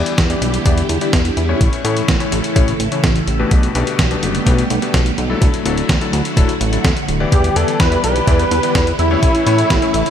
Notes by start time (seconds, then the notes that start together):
Already playing: D3 E3 G3 B3 E4 G4 D5
0.06 closed hi-hat
0.18 E2, kick, snare, closed hi-hat
0.30 E3 B3 E4 G4 D5, closed hi-hat
0.42 B1, closed hi-hat
0.54 closed hi-hat
0.66 E2 E3 B3 E4 G4 D5, kick, closed hi-hat
0.78 closed hi-hat
0.89 E2, closed hi-hat
1.01 E3 B3 E4 G4 D5, closed hi-hat
1.13 E2, kick, snare, closed hi-hat
1.25 closed hi-hat
1.37 E2, closed hi-hat
1.49 A2 A3 C#4 E4 C#5
1.61 A1 C#3 E3 A3 A4, kick, closed hi-hat
1.73 closed hi-hat
1.84 A2 A3 C#4 E4 C#5, closed hi-hat
1.97 closed hi-hat
2.08 A1, kick, snare, closed hi-hat
2.20 A2 A3 C#4 E4 C#5, closed hi-hat
2.32 A1, closed hi-hat
2.44 closed hi-hat
2.56 A1 A2 A3 C#4 E4 C#5, kick, closed hi-hat
2.68 closed hi-hat
2.80 A1, closed hi-hat
2.92 A2 A3 C#4 E4 C#5, closed hi-hat
3.04 A1, kick, snare, closed hi-hat
3.16 closed hi-hat
3.27 A1, closed hi-hat
3.39 B2 A3 D4 G4 B4
3.51 B1 D3 G3 B3 G4, kick, closed hi-hat
3.63 closed hi-hat
3.75 B1 B2 A3 D4 G4 B4, closed hi-hat
3.87 closed hi-hat
3.99 B1, kick, snare, closed hi-hat
4.11 B2 A3 D4 G4 B4, closed hi-hat
4.23 F#1, closed hi-hat
4.35 closed hi-hat
4.46 B1 B2 A3 D4 G4 B4, kick, closed hi-hat
4.58 closed hi-hat
4.70 B1, closed hi-hat
4.82 B2 A3 D4 G4 B4, closed hi-hat
4.94 B1, kick, snare, closed hi-hat
5.06 closed hi-hat
5.18 B1, closed hi-hat
5.30 F#3 D4 E4 A4
5.42 D2 F#3 E4 F#4, kick, closed hi-hat
5.54 closed hi-hat
5.65 D1 F#3 D4 E4 A4, closed hi-hat
5.78 closed hi-hat
5.89 D2, kick, snare, closed hi-hat
6.01 F#3 D4 E4 A4, closed hi-hat
6.13 D2, closed hi-hat
6.25 closed hi-hat
6.37 D1 F#3 D4 E4 A4, kick, closed hi-hat
6.49 closed hi-hat
6.61 A1, closed hi-hat
6.73 F#3 D4 E4 A4, closed hi-hat
6.84 D2, kick, snare, closed hi-hat
6.97 closed hi-hat
7.08 D1, closed hi-hat
7.20 E3 B3 E4 G4 D5
7.32 E2 G3 B3 E4 G4, kick, closed hi-hat
7.44 closed hi-hat
7.56 E2 E3 B3 E4 G4 A4 D5, closed hi-hat
7.68 closed hi-hat
7.80 E2 B4, kick, snare, closed hi-hat
7.92 E3 B3 E4 G4 D5, closed hi-hat
8.04 B1 B4, closed hi-hat
8.16 closed hi-hat
8.27 E2 E3 B3 E4 G4 D5, kick, closed hi-hat
8.39 closed hi-hat
8.51 E2, closed hi-hat
8.63 E3 B3 E4 G4 D5, closed hi-hat
8.75 E2, kick, snare, closed hi-hat
8.87 closed hi-hat
8.99 E2 E4, closed hi-hat
9.11 A2 A3 C#4 E4 C#5
9.23 A1 C#3 E3 A3 A4, kick, closed hi-hat
9.35 closed hi-hat
9.47 A2 A3 C#4 E4 C#5, closed hi-hat
9.58 closed hi-hat
9.70 A1, kick, snare, closed hi-hat
9.82 A2 A3 C#4 E4 C#5, closed hi-hat
9.94 A1, closed hi-hat
10.06 closed hi-hat